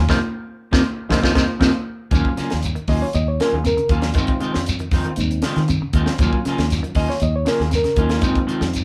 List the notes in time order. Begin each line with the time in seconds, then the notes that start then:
0.08 F2 C3 D#3 F3 C4 D#4 F4 G#4, kick, snare, high conga, shekere
0.71 F2 C3 D#3 F3 C4 D#4 F4 G#4, kick, snare, high conga, shekere
1.09 F2 C3 D#3 F3 C4 D#4 F4 G#4, kick, snare, high conga, shekere
1.22 F2 C3 D#3 F3 C4 D#4 F4 G#4, kick, snare, high conga, shekere
1.34 F2 C3 D#3 F3 C4 D#4 F4 G#4, kick, snare, high conga
1.38 shekere
1.60 F2 C3 D#3 F3 C4 D#4 F4 G#4, kick, snare, high conga, shekere
2.11 D#2 F3 F#3 A#3 C#4 F4, kick, closed hi-hat, shekere
2.25 kick
2.37 C#3 A#3 C#4 F4, muted clean electric guitar stroke, muted fingered electric bass stroke, snare, closed hi-hat, shekere
2.50 D#2 F3, snare, closed hi-hat
2.62 closed hi-hat, shekere
2.75 D#3, closed hi-hat
2.88 D#2 F#3 A#3 C#4 F4 D#5, kick, open hi-hat, shekere
3.02 D#3 C#5
3.13 D#2 D#5, closed hi-hat, shekere
3.28 C#5
3.40 F#3 A#3 C#4 F4 A#4, snare, closed hi-hat, shekere
3.53 D#2 G#4
3.64 C3 A#4, closed hi-hat, shekere
3.77 C#3, closed hi-hat
3.89 D#2 F#3 A#3 C#4 F4, kick, closed hi-hat, shekere
4.02 F3, snare, closed hi-hat
4.14 F2 D#3 G#3 C4 D#4 F4, kick, closed hi-hat, shekere
4.27 kick, closed hi-hat
4.40 C3 D#3 G#3 C4 F4, closed hi-hat, shekere
4.54 F2 F3, snare
4.66 closed hi-hat, shekere
4.79 D#3, closed hi-hat
4.91 F2 D#3 G#3 C4 F4, kick, snare, open hi-hat, shekere
5.05 D#3, closed hi-hat
5.16 D#2 G#3 C4 D#4, closed hi-hat, shekere
5.31 closed hi-hat
5.42 C#3 D#3 G#3 C4 F4, snare, closed hi-hat, shekere
5.56 D#3, snare, closed hi-hat
5.68 C3, closed hi-hat, shekere
5.81 C#3, muted fingered electric bass stroke
5.93 D#2 D#3 G#3 C4 F4, kick, closed hi-hat, shekere
6.06 F3, snare
6.19 D#2 F3 F#3 A#3 C#4 F4, kick, closed hi-hat, shekere
6.33 kick
6.45 C#3 F#3 A#3 C#4 F4, muted fingered electric bass stroke, snare, closed hi-hat, shekere
6.58 D#2 F3, snare, closed hi-hat
6.70 snare, closed hi-hat, shekere
6.83 D#3, closed hi-hat
6.95 D#2 F#3 A#3 C#4 F4 D#5, kick, open hi-hat, shekere
7.09 D#3 C#5, snare
7.20 D#2 D#5, closed hi-hat, shekere
7.36 C#5
7.45 C#3 F#3 A#3 C#4 F4 A#4, snare, closed hi-hat, shekere
7.60 D#2 G#4, snare
7.71 C3, snare, closed hi-hat, shekere
7.75 A#4
7.84 C#3, snare, closed hi-hat
7.96 D#2 F#3 A#3 C#4 D#4 F4, kick, closed hi-hat, shekere
8.09 F3 A#3 C#4 F4, snare, closed hi-hat
8.21 F2 D#3 G#3 C4 D#4 F4, kick, closed hi-hat, shekere
8.35 kick, closed hi-hat
8.47 C3 D#3 G#3 C4 F4, closed hi-hat, shekere
8.61 F2 F3, snare
8.73 closed hi-hat, shekere